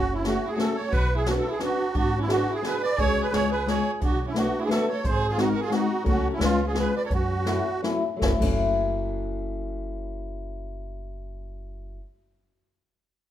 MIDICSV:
0, 0, Header, 1, 6, 480
1, 0, Start_track
1, 0, Key_signature, 3, "minor"
1, 0, Tempo, 342466
1, 1294, Time_signature, 3, 2, 24, 8
1, 8493, Tempo, 350263
1, 10413, Tempo, 385109
1, 17702, End_track
2, 0, Start_track
2, 0, Title_t, "Accordion"
2, 0, Program_c, 0, 21
2, 0, Note_on_c, 0, 66, 99
2, 192, Note_on_c, 0, 64, 73
2, 196, Note_off_c, 0, 66, 0
2, 348, Note_off_c, 0, 64, 0
2, 367, Note_on_c, 0, 66, 88
2, 660, Note_on_c, 0, 68, 73
2, 680, Note_off_c, 0, 66, 0
2, 822, Note_off_c, 0, 68, 0
2, 840, Note_on_c, 0, 69, 84
2, 1059, Note_on_c, 0, 73, 79
2, 1074, Note_off_c, 0, 69, 0
2, 1282, Note_on_c, 0, 71, 104
2, 1303, Note_off_c, 0, 73, 0
2, 1616, Note_off_c, 0, 71, 0
2, 1620, Note_on_c, 0, 68, 73
2, 1779, Note_off_c, 0, 68, 0
2, 1799, Note_on_c, 0, 66, 100
2, 1864, Note_off_c, 0, 66, 0
2, 1958, Note_on_c, 0, 69, 70
2, 2107, Note_off_c, 0, 69, 0
2, 2113, Note_on_c, 0, 68, 74
2, 2250, Note_off_c, 0, 68, 0
2, 2296, Note_on_c, 0, 66, 91
2, 2742, Note_off_c, 0, 66, 0
2, 2763, Note_on_c, 0, 66, 94
2, 3074, Note_off_c, 0, 66, 0
2, 3097, Note_on_c, 0, 64, 84
2, 3237, Note_off_c, 0, 64, 0
2, 3244, Note_on_c, 0, 66, 92
2, 3555, Note_off_c, 0, 66, 0
2, 3563, Note_on_c, 0, 68, 78
2, 3710, Note_off_c, 0, 68, 0
2, 3724, Note_on_c, 0, 71, 89
2, 3953, Note_off_c, 0, 71, 0
2, 3965, Note_on_c, 0, 74, 106
2, 4190, Note_on_c, 0, 73, 119
2, 4193, Note_off_c, 0, 74, 0
2, 4509, Note_off_c, 0, 73, 0
2, 4524, Note_on_c, 0, 71, 82
2, 4670, Note_on_c, 0, 73, 109
2, 4671, Note_off_c, 0, 71, 0
2, 4908, Note_off_c, 0, 73, 0
2, 4919, Note_on_c, 0, 71, 85
2, 5152, Note_off_c, 0, 71, 0
2, 5168, Note_on_c, 0, 73, 85
2, 5487, Note_off_c, 0, 73, 0
2, 5666, Note_on_c, 0, 66, 80
2, 5970, Note_off_c, 0, 66, 0
2, 5990, Note_on_c, 0, 64, 71
2, 6127, Note_off_c, 0, 64, 0
2, 6137, Note_on_c, 0, 66, 87
2, 6446, Note_off_c, 0, 66, 0
2, 6455, Note_on_c, 0, 68, 76
2, 6467, Note_on_c, 0, 66, 68
2, 6483, Note_off_c, 0, 68, 0
2, 6501, Note_off_c, 0, 66, 0
2, 6515, Note_on_c, 0, 68, 88
2, 6587, Note_off_c, 0, 68, 0
2, 6599, Note_on_c, 0, 69, 81
2, 6835, Note_off_c, 0, 69, 0
2, 6850, Note_on_c, 0, 73, 73
2, 7067, Note_on_c, 0, 72, 92
2, 7079, Note_off_c, 0, 73, 0
2, 7390, Note_off_c, 0, 72, 0
2, 7396, Note_on_c, 0, 68, 88
2, 7542, Note_on_c, 0, 66, 91
2, 7550, Note_off_c, 0, 68, 0
2, 7690, Note_on_c, 0, 70, 73
2, 7703, Note_off_c, 0, 66, 0
2, 7852, Note_on_c, 0, 68, 88
2, 7857, Note_off_c, 0, 70, 0
2, 8016, Note_on_c, 0, 66, 88
2, 8018, Note_off_c, 0, 68, 0
2, 8461, Note_off_c, 0, 66, 0
2, 8519, Note_on_c, 0, 66, 92
2, 8799, Note_off_c, 0, 66, 0
2, 8866, Note_on_c, 0, 64, 73
2, 8998, Note_off_c, 0, 64, 0
2, 9009, Note_on_c, 0, 65, 101
2, 9312, Note_off_c, 0, 65, 0
2, 9327, Note_on_c, 0, 68, 71
2, 9466, Note_off_c, 0, 68, 0
2, 9502, Note_on_c, 0, 71, 85
2, 9717, Note_off_c, 0, 71, 0
2, 9735, Note_on_c, 0, 74, 82
2, 9830, Note_off_c, 0, 74, 0
2, 9855, Note_on_c, 0, 73, 71
2, 9951, Note_off_c, 0, 73, 0
2, 9973, Note_on_c, 0, 66, 86
2, 10849, Note_off_c, 0, 66, 0
2, 17702, End_track
3, 0, Start_track
3, 0, Title_t, "Violin"
3, 0, Program_c, 1, 40
3, 176, Note_on_c, 1, 61, 54
3, 300, Note_off_c, 1, 61, 0
3, 308, Note_on_c, 1, 61, 67
3, 619, Note_off_c, 1, 61, 0
3, 636, Note_on_c, 1, 64, 74
3, 762, Note_off_c, 1, 64, 0
3, 771, Note_on_c, 1, 66, 67
3, 1014, Note_off_c, 1, 66, 0
3, 1048, Note_on_c, 1, 69, 75
3, 1267, Note_off_c, 1, 69, 0
3, 1275, Note_on_c, 1, 66, 81
3, 1579, Note_off_c, 1, 66, 0
3, 1613, Note_on_c, 1, 64, 63
3, 1760, Note_off_c, 1, 64, 0
3, 1794, Note_on_c, 1, 62, 65
3, 1860, Note_off_c, 1, 62, 0
3, 1928, Note_on_c, 1, 66, 71
3, 2076, Note_off_c, 1, 66, 0
3, 2083, Note_on_c, 1, 64, 68
3, 2234, Note_off_c, 1, 64, 0
3, 2261, Note_on_c, 1, 62, 66
3, 2701, Note_off_c, 1, 62, 0
3, 2715, Note_on_c, 1, 62, 82
3, 3019, Note_off_c, 1, 62, 0
3, 3069, Note_on_c, 1, 61, 69
3, 3208, Note_off_c, 1, 61, 0
3, 3234, Note_on_c, 1, 62, 75
3, 3520, Note_off_c, 1, 62, 0
3, 3529, Note_on_c, 1, 64, 62
3, 3678, Note_off_c, 1, 64, 0
3, 3704, Note_on_c, 1, 68, 80
3, 3921, Note_off_c, 1, 68, 0
3, 3933, Note_on_c, 1, 71, 86
3, 4154, Note_off_c, 1, 71, 0
3, 4189, Note_on_c, 1, 68, 77
3, 4477, Note_off_c, 1, 68, 0
3, 4491, Note_on_c, 1, 68, 70
3, 4639, Note_off_c, 1, 68, 0
3, 4670, Note_on_c, 1, 68, 81
3, 4885, Note_off_c, 1, 68, 0
3, 4931, Note_on_c, 1, 68, 71
3, 5136, Note_off_c, 1, 68, 0
3, 5163, Note_on_c, 1, 68, 81
3, 5485, Note_off_c, 1, 68, 0
3, 5649, Note_on_c, 1, 62, 74
3, 5931, Note_off_c, 1, 62, 0
3, 5987, Note_on_c, 1, 61, 61
3, 6112, Note_off_c, 1, 61, 0
3, 6119, Note_on_c, 1, 62, 66
3, 6406, Note_off_c, 1, 62, 0
3, 6433, Note_on_c, 1, 64, 75
3, 6462, Note_off_c, 1, 64, 0
3, 6472, Note_on_c, 1, 62, 65
3, 6501, Note_off_c, 1, 62, 0
3, 6535, Note_on_c, 1, 64, 72
3, 6591, Note_off_c, 1, 64, 0
3, 6624, Note_on_c, 1, 66, 71
3, 6825, Note_off_c, 1, 66, 0
3, 6888, Note_on_c, 1, 69, 76
3, 7078, Note_off_c, 1, 69, 0
3, 7156, Note_on_c, 1, 68, 88
3, 7407, Note_off_c, 1, 68, 0
3, 7466, Note_on_c, 1, 65, 75
3, 7572, Note_off_c, 1, 65, 0
3, 7591, Note_on_c, 1, 63, 73
3, 7713, Note_off_c, 1, 63, 0
3, 7764, Note_on_c, 1, 66, 74
3, 7880, Note_off_c, 1, 66, 0
3, 7910, Note_on_c, 1, 65, 74
3, 8033, Note_off_c, 1, 65, 0
3, 8080, Note_on_c, 1, 63, 65
3, 8496, Note_off_c, 1, 63, 0
3, 8540, Note_on_c, 1, 61, 69
3, 8810, Note_off_c, 1, 61, 0
3, 8865, Note_on_c, 1, 61, 68
3, 8985, Note_off_c, 1, 61, 0
3, 9034, Note_on_c, 1, 61, 66
3, 9296, Note_off_c, 1, 61, 0
3, 9350, Note_on_c, 1, 65, 65
3, 9457, Note_off_c, 1, 65, 0
3, 9465, Note_on_c, 1, 68, 70
3, 9676, Note_off_c, 1, 68, 0
3, 9715, Note_on_c, 1, 71, 74
3, 9810, Note_off_c, 1, 71, 0
3, 9859, Note_on_c, 1, 69, 66
3, 9944, Note_off_c, 1, 69, 0
3, 9968, Note_on_c, 1, 61, 55
3, 10846, Note_off_c, 1, 61, 0
3, 17702, End_track
4, 0, Start_track
4, 0, Title_t, "Steel-string acoustic guitar"
4, 0, Program_c, 2, 25
4, 345, Note_on_c, 2, 57, 63
4, 357, Note_on_c, 2, 61, 55
4, 363, Note_on_c, 2, 66, 50
4, 374, Note_on_c, 2, 68, 67
4, 581, Note_off_c, 2, 57, 0
4, 586, Note_off_c, 2, 61, 0
4, 590, Note_off_c, 2, 66, 0
4, 595, Note_off_c, 2, 68, 0
4, 791, Note_on_c, 2, 57, 66
4, 806, Note_on_c, 2, 61, 61
4, 817, Note_on_c, 2, 66, 52
4, 827, Note_on_c, 2, 68, 67
4, 1042, Note_off_c, 2, 57, 0
4, 1050, Note_off_c, 2, 61, 0
4, 1057, Note_off_c, 2, 66, 0
4, 1059, Note_off_c, 2, 68, 0
4, 1773, Note_on_c, 2, 61, 62
4, 1780, Note_on_c, 2, 59, 57
4, 1793, Note_on_c, 2, 62, 59
4, 1799, Note_on_c, 2, 66, 69
4, 2011, Note_off_c, 2, 61, 0
4, 2012, Note_off_c, 2, 59, 0
4, 2021, Note_off_c, 2, 62, 0
4, 2023, Note_off_c, 2, 66, 0
4, 2233, Note_on_c, 2, 61, 59
4, 2235, Note_on_c, 2, 59, 67
4, 2247, Note_on_c, 2, 62, 64
4, 2257, Note_on_c, 2, 66, 76
4, 2480, Note_off_c, 2, 59, 0
4, 2481, Note_off_c, 2, 61, 0
4, 2487, Note_off_c, 2, 62, 0
4, 2492, Note_off_c, 2, 66, 0
4, 3179, Note_on_c, 2, 59, 69
4, 3194, Note_on_c, 2, 62, 62
4, 3203, Note_on_c, 2, 66, 68
4, 3211, Note_on_c, 2, 68, 68
4, 3434, Note_off_c, 2, 59, 0
4, 3442, Note_off_c, 2, 62, 0
4, 3446, Note_off_c, 2, 66, 0
4, 3448, Note_off_c, 2, 68, 0
4, 3674, Note_on_c, 2, 59, 67
4, 3689, Note_on_c, 2, 62, 64
4, 3690, Note_on_c, 2, 66, 54
4, 3702, Note_on_c, 2, 68, 71
4, 3922, Note_off_c, 2, 59, 0
4, 3929, Note_off_c, 2, 62, 0
4, 3929, Note_off_c, 2, 66, 0
4, 3936, Note_off_c, 2, 68, 0
4, 4177, Note_on_c, 2, 56, 60
4, 4190, Note_on_c, 2, 61, 57
4, 4193, Note_on_c, 2, 66, 48
4, 4204, Note_on_c, 2, 68, 69
4, 4557, Note_off_c, 2, 56, 0
4, 4564, Note_off_c, 2, 61, 0
4, 4565, Note_off_c, 2, 66, 0
4, 4571, Note_off_c, 2, 68, 0
4, 4650, Note_on_c, 2, 56, 71
4, 4656, Note_on_c, 2, 61, 57
4, 4664, Note_on_c, 2, 65, 52
4, 4673, Note_on_c, 2, 68, 67
4, 4892, Note_off_c, 2, 56, 0
4, 4892, Note_off_c, 2, 61, 0
4, 4898, Note_off_c, 2, 65, 0
4, 4902, Note_off_c, 2, 68, 0
4, 5132, Note_on_c, 2, 56, 64
4, 5146, Note_on_c, 2, 61, 48
4, 5155, Note_on_c, 2, 65, 55
4, 5161, Note_on_c, 2, 68, 71
4, 5373, Note_off_c, 2, 56, 0
4, 5381, Note_off_c, 2, 61, 0
4, 5383, Note_off_c, 2, 65, 0
4, 5388, Note_off_c, 2, 68, 0
4, 6082, Note_on_c, 2, 57, 64
4, 6088, Note_on_c, 2, 59, 50
4, 6100, Note_on_c, 2, 62, 60
4, 6112, Note_on_c, 2, 66, 69
4, 6329, Note_off_c, 2, 57, 0
4, 6332, Note_off_c, 2, 59, 0
4, 6338, Note_off_c, 2, 62, 0
4, 6344, Note_off_c, 2, 66, 0
4, 6559, Note_on_c, 2, 57, 67
4, 6568, Note_on_c, 2, 59, 63
4, 6573, Note_on_c, 2, 62, 60
4, 6588, Note_on_c, 2, 66, 64
4, 6810, Note_off_c, 2, 57, 0
4, 6810, Note_off_c, 2, 59, 0
4, 6815, Note_off_c, 2, 62, 0
4, 6822, Note_off_c, 2, 66, 0
4, 7518, Note_on_c, 2, 56, 56
4, 7523, Note_on_c, 2, 60, 66
4, 7532, Note_on_c, 2, 63, 61
4, 7539, Note_on_c, 2, 66, 74
4, 7767, Note_off_c, 2, 56, 0
4, 7767, Note_off_c, 2, 60, 0
4, 7774, Note_off_c, 2, 63, 0
4, 7777, Note_off_c, 2, 66, 0
4, 7984, Note_on_c, 2, 56, 71
4, 7995, Note_on_c, 2, 60, 57
4, 8002, Note_on_c, 2, 63, 55
4, 8008, Note_on_c, 2, 66, 74
4, 8240, Note_off_c, 2, 56, 0
4, 8245, Note_off_c, 2, 60, 0
4, 8248, Note_off_c, 2, 63, 0
4, 8252, Note_off_c, 2, 66, 0
4, 8462, Note_on_c, 2, 54, 67
4, 8473, Note_on_c, 2, 61, 68
4, 8474, Note_on_c, 2, 57, 66
4, 8479, Note_on_c, 2, 66, 77
4, 8855, Note_off_c, 2, 54, 0
4, 8860, Note_off_c, 2, 61, 0
4, 8861, Note_off_c, 2, 57, 0
4, 8863, Note_off_c, 2, 66, 0
4, 8932, Note_on_c, 2, 56, 69
4, 8943, Note_on_c, 2, 61, 58
4, 8946, Note_on_c, 2, 59, 56
4, 8962, Note_on_c, 2, 65, 71
4, 9186, Note_off_c, 2, 56, 0
4, 9192, Note_off_c, 2, 59, 0
4, 9192, Note_off_c, 2, 61, 0
4, 9201, Note_off_c, 2, 65, 0
4, 9413, Note_on_c, 2, 56, 64
4, 9425, Note_on_c, 2, 59, 59
4, 9433, Note_on_c, 2, 61, 58
4, 9439, Note_on_c, 2, 65, 67
4, 9666, Note_off_c, 2, 56, 0
4, 9672, Note_off_c, 2, 59, 0
4, 9676, Note_off_c, 2, 61, 0
4, 9678, Note_off_c, 2, 65, 0
4, 10398, Note_on_c, 2, 54, 60
4, 10406, Note_on_c, 2, 57, 58
4, 10413, Note_on_c, 2, 61, 56
4, 10423, Note_on_c, 2, 64, 71
4, 10636, Note_off_c, 2, 54, 0
4, 10640, Note_off_c, 2, 57, 0
4, 10642, Note_off_c, 2, 61, 0
4, 10647, Note_off_c, 2, 64, 0
4, 10868, Note_on_c, 2, 54, 72
4, 10870, Note_on_c, 2, 57, 63
4, 10873, Note_on_c, 2, 61, 58
4, 10883, Note_on_c, 2, 64, 87
4, 11108, Note_off_c, 2, 54, 0
4, 11108, Note_off_c, 2, 57, 0
4, 11111, Note_off_c, 2, 61, 0
4, 11113, Note_off_c, 2, 64, 0
4, 11291, Note_on_c, 2, 54, 66
4, 11321, Note_on_c, 2, 57, 57
4, 11356, Note_on_c, 2, 61, 56
4, 11381, Note_on_c, 2, 64, 77
4, 11453, Note_off_c, 2, 54, 0
4, 11469, Note_off_c, 2, 57, 0
4, 11488, Note_off_c, 2, 61, 0
4, 11501, Note_off_c, 2, 64, 0
4, 11562, Note_on_c, 2, 54, 78
4, 11584, Note_on_c, 2, 57, 60
4, 11619, Note_on_c, 2, 61, 66
4, 11639, Note_on_c, 2, 64, 81
4, 16035, Note_off_c, 2, 54, 0
4, 16046, Note_off_c, 2, 57, 0
4, 16064, Note_off_c, 2, 61, 0
4, 16074, Note_off_c, 2, 64, 0
4, 17702, End_track
5, 0, Start_track
5, 0, Title_t, "Upright bass"
5, 0, Program_c, 3, 32
5, 0, Note_on_c, 3, 30, 77
5, 484, Note_off_c, 3, 30, 0
5, 1301, Note_on_c, 3, 35, 87
5, 1919, Note_off_c, 3, 35, 0
5, 2745, Note_on_c, 3, 32, 83
5, 3364, Note_off_c, 3, 32, 0
5, 4188, Note_on_c, 3, 37, 86
5, 4494, Note_off_c, 3, 37, 0
5, 4667, Note_on_c, 3, 37, 85
5, 5288, Note_off_c, 3, 37, 0
5, 5642, Note_on_c, 3, 35, 74
5, 6258, Note_off_c, 3, 35, 0
5, 7080, Note_on_c, 3, 32, 90
5, 7695, Note_off_c, 3, 32, 0
5, 8502, Note_on_c, 3, 37, 92
5, 8806, Note_off_c, 3, 37, 0
5, 8962, Note_on_c, 3, 37, 87
5, 9584, Note_off_c, 3, 37, 0
5, 9938, Note_on_c, 3, 42, 92
5, 10567, Note_off_c, 3, 42, 0
5, 11360, Note_on_c, 3, 30, 80
5, 11490, Note_off_c, 3, 30, 0
5, 11596, Note_on_c, 3, 30, 87
5, 16052, Note_off_c, 3, 30, 0
5, 17702, End_track
6, 0, Start_track
6, 0, Title_t, "Drums"
6, 347, Note_on_c, 9, 38, 62
6, 347, Note_on_c, 9, 42, 50
6, 487, Note_off_c, 9, 38, 0
6, 487, Note_off_c, 9, 42, 0
6, 832, Note_on_c, 9, 38, 62
6, 832, Note_on_c, 9, 42, 45
6, 972, Note_off_c, 9, 38, 0
6, 972, Note_off_c, 9, 42, 0
6, 1296, Note_on_c, 9, 42, 47
6, 1300, Note_on_c, 9, 36, 93
6, 1437, Note_off_c, 9, 42, 0
6, 1440, Note_off_c, 9, 36, 0
6, 1770, Note_on_c, 9, 38, 69
6, 1770, Note_on_c, 9, 42, 58
6, 1910, Note_off_c, 9, 38, 0
6, 1910, Note_off_c, 9, 42, 0
6, 2247, Note_on_c, 9, 38, 64
6, 2247, Note_on_c, 9, 42, 44
6, 2387, Note_off_c, 9, 38, 0
6, 2387, Note_off_c, 9, 42, 0
6, 2725, Note_on_c, 9, 42, 43
6, 2735, Note_on_c, 9, 36, 90
6, 2866, Note_off_c, 9, 42, 0
6, 2875, Note_off_c, 9, 36, 0
6, 3220, Note_on_c, 9, 38, 78
6, 3220, Note_on_c, 9, 42, 50
6, 3360, Note_off_c, 9, 38, 0
6, 3360, Note_off_c, 9, 42, 0
6, 3704, Note_on_c, 9, 38, 65
6, 3704, Note_on_c, 9, 42, 41
6, 3844, Note_off_c, 9, 38, 0
6, 3844, Note_off_c, 9, 42, 0
6, 4183, Note_on_c, 9, 36, 86
6, 4184, Note_on_c, 9, 42, 46
6, 4323, Note_off_c, 9, 36, 0
6, 4324, Note_off_c, 9, 42, 0
6, 4676, Note_on_c, 9, 38, 73
6, 4676, Note_on_c, 9, 42, 50
6, 4816, Note_off_c, 9, 38, 0
6, 4816, Note_off_c, 9, 42, 0
6, 5160, Note_on_c, 9, 38, 52
6, 5160, Note_on_c, 9, 42, 49
6, 5300, Note_off_c, 9, 38, 0
6, 5300, Note_off_c, 9, 42, 0
6, 5624, Note_on_c, 9, 42, 48
6, 5633, Note_on_c, 9, 36, 79
6, 5764, Note_off_c, 9, 42, 0
6, 5773, Note_off_c, 9, 36, 0
6, 6108, Note_on_c, 9, 38, 77
6, 6108, Note_on_c, 9, 42, 62
6, 6249, Note_off_c, 9, 38, 0
6, 6249, Note_off_c, 9, 42, 0
6, 6600, Note_on_c, 9, 38, 63
6, 6600, Note_on_c, 9, 42, 43
6, 6741, Note_off_c, 9, 38, 0
6, 6741, Note_off_c, 9, 42, 0
6, 7071, Note_on_c, 9, 42, 44
6, 7072, Note_on_c, 9, 36, 83
6, 7211, Note_off_c, 9, 42, 0
6, 7213, Note_off_c, 9, 36, 0
6, 7546, Note_on_c, 9, 38, 65
6, 7546, Note_on_c, 9, 42, 48
6, 7687, Note_off_c, 9, 38, 0
6, 7687, Note_off_c, 9, 42, 0
6, 8017, Note_on_c, 9, 38, 55
6, 8017, Note_on_c, 9, 42, 39
6, 8157, Note_off_c, 9, 38, 0
6, 8157, Note_off_c, 9, 42, 0
6, 8491, Note_on_c, 9, 42, 41
6, 8497, Note_on_c, 9, 36, 86
6, 8628, Note_off_c, 9, 42, 0
6, 8634, Note_off_c, 9, 36, 0
6, 8971, Note_on_c, 9, 38, 73
6, 8971, Note_on_c, 9, 42, 49
6, 9108, Note_off_c, 9, 38, 0
6, 9108, Note_off_c, 9, 42, 0
6, 9443, Note_on_c, 9, 38, 59
6, 9443, Note_on_c, 9, 42, 44
6, 9580, Note_off_c, 9, 38, 0
6, 9580, Note_off_c, 9, 42, 0
6, 9926, Note_on_c, 9, 36, 77
6, 9928, Note_on_c, 9, 42, 52
6, 10063, Note_off_c, 9, 36, 0
6, 10065, Note_off_c, 9, 42, 0
6, 10417, Note_on_c, 9, 38, 75
6, 10417, Note_on_c, 9, 42, 54
6, 10542, Note_off_c, 9, 38, 0
6, 10542, Note_off_c, 9, 42, 0
6, 10887, Note_on_c, 9, 38, 61
6, 10887, Note_on_c, 9, 42, 41
6, 11012, Note_off_c, 9, 38, 0
6, 11012, Note_off_c, 9, 42, 0
6, 11356, Note_on_c, 9, 36, 78
6, 11358, Note_on_c, 9, 38, 71
6, 11481, Note_off_c, 9, 36, 0
6, 11483, Note_off_c, 9, 38, 0
6, 11597, Note_on_c, 9, 36, 79
6, 11605, Note_on_c, 9, 49, 71
6, 11721, Note_off_c, 9, 36, 0
6, 11729, Note_off_c, 9, 49, 0
6, 17702, End_track
0, 0, End_of_file